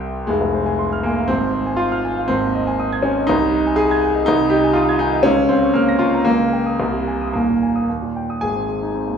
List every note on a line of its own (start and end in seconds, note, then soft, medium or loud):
0.00 0.22 C2 medium
0.00 0.22 G3 medium
0.00 0.23 C4 medium
0.00 0.24 E4 medium
0.00 0.31 G5 medium
0.27 1.27 F1 medium
0.27 1.04 G#3 loud
0.41 0.62 C2 medium
0.54 0.75 C5 medium
0.66 0.87 G#5 medium
0.79 1.00 C6 medium
0.93 1.13 F6 medium
1.03 1.29 A#3 medium
1.03 1.25 G#5 medium
1.17 1.30 F5 medium
1.28 2.28 G#1 medium
1.28 1.79 C4 loud
1.41 1.62 G#2 medium
1.54 1.75 C5 medium
1.66 1.87 G#5 medium
1.77 2.29 F4 loud
1.77 2.00 C6 medium
1.92 2.13 F6 medium
2.05 2.25 G#5 medium
2.18 2.31 F5 medium
2.28 3.26 G#1 medium
2.28 3.04 C4 loud
2.43 2.63 D#2 medium
2.55 2.75 D#5 medium
2.67 2.87 G#5 medium
2.79 3.00 D#6 medium
2.93 3.13 G#6 medium
3.03 3.29 C#4 medium
3.03 3.25 G#5 medium
3.17 3.30 D#5 medium
3.27 4.25 C2 medium
3.27 3.77 D#4 loud
3.42 3.62 C3 medium
3.54 3.74 D#5 medium
3.66 3.86 G#5 medium
3.76 4.27 G#4 loud
3.76 3.98 D#6 medium
3.91 4.11 G#6 medium
4.04 4.23 G#5 medium
4.15 4.28 D#5 medium
4.26 5.23 C2 medium
4.26 4.52 D#4 loud
4.40 4.60 C3 medium
4.50 4.76 G4 loud
4.50 4.72 D#5 medium
4.64 4.84 G#5 medium
4.73 5.00 F4 loud
4.73 4.96 D#6 medium
4.89 5.09 G#6 medium
4.99 5.25 D#4 loud
4.99 5.21 G#5 medium
5.14 5.26 D#5 medium
5.23 6.23 C#2 medium
5.23 5.49 C#4 loud
5.38 5.58 C#3 medium
5.49 5.75 C4 loud
5.49 5.71 F5 medium
5.63 5.83 C#6 medium
5.74 6.00 A#3 medium
5.74 5.96 F6 medium
5.89 6.09 A#6 medium
5.99 6.26 F4 loud
5.99 6.22 C#6 medium
6.15 6.27 A#5 medium
6.25 6.78 C#2 medium
6.25 7.32 A#3 loud
6.40 6.61 C#3 medium
6.53 6.74 G5 medium
6.67 6.80 D#6 medium
6.80 7.32 C2 medium
6.93 7.15 C3 medium
7.08 7.29 G#5 medium
7.21 7.34 D#6 medium
7.33 7.87 D#1 medium
7.33 7.87 D#2 medium
7.33 7.88 A#3 medium
7.49 7.70 A#2 soft
7.63 7.84 G#5 medium
7.76 7.88 D#6 medium
7.89 8.41 D#2 medium
8.02 8.24 A#2 medium
8.16 8.37 G5 soft
8.30 8.43 D#6 medium
8.41 9.18 G#1 medium
8.41 8.67 G#4 medium
8.41 9.18 G#5 medium
8.55 8.76 C4 soft
8.69 8.89 G#4 soft
8.83 9.02 D#4 soft
8.95 9.15 C4 medium
9.07 9.18 D#2 medium